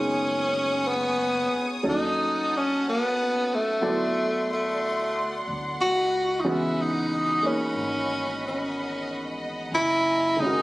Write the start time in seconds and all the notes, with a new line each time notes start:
Already playing: F#1 D#3 G#3 B3 C#4 D#4 F#4 G#4 A#4 C#5 G#5 C#6 D#6
0.87 B3
1.54 muted upright bass stroke
1.83 D#2 F#3 A3 C#4 D#4 A4 F#5 A5
1.89 D#4
2.57 C#4
2.89 B3
3.54 A3
3.81 D2 F#3 B3 E4 A4 D5 F#5 C6
4.53 A3
5.48 D2
5.79 C#2 F#4 D#5 B5
6.40 D#4
6.44 E3 G#3 B3 C#4 F#4
6.49 E4
6.82 D#4
7.43 A#3 C#4 D#4 G#4 C#5, muted upright bass stroke
7.75 G#1
8.48 C#4
9.72 F#1 E4 G#5 A#5
10.37 D#3 G#3 D#4
10.42 C#4 F#4
10.47 A#4